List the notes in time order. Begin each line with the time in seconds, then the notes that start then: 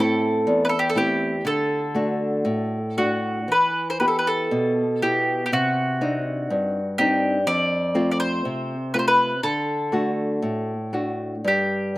Already playing: A2
0.00 A3 C4 E4 A4
0.47 E2
0.65 B4
0.69 A4
0.79 G4
0.90 A4
0.95 A3 C4 E4 G4
1.45 D3 A4
1.95 A3 D4 F#4
2.45 A2
2.97 A3 D4 F#4
3.48 E3 B4
3.90 C5
4.00 B3 E4 G4 B4
4.08 A4
4.19 B4
4.27 A4
4.51 B2
5.02 B3 E4 G4
5.46 G4
5.52 C3 F#4
6.01 C4 D4 D#4
6.50 G2
6.98 C4 D4 D#4 G4
7.47 F2 D5
7.95 A3 C4 F4
8.11 D5
8.20 C5
8.45 C3
8.94 A3 C4 F4 B4
8.99 C5
9.08 B4
9.43 D3 A4
9.92 A3 D4 F#4
10.42 A2
10.93 A3 D4 F#4
11.44 G2 G4